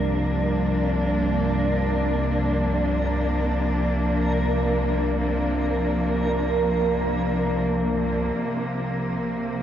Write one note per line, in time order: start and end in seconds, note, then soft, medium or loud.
0.00 8.37 C2 medium
0.00 8.37 G2 medium
0.00 9.63 C3 soft
0.00 9.63 F3 medium
0.00 9.63 A#3 medium
0.00 8.38 D4 medium
0.00 8.41 A#4 medium
8.34 9.63 C2 medium
8.34 9.63 G2 medium
8.34 9.63 C5 medium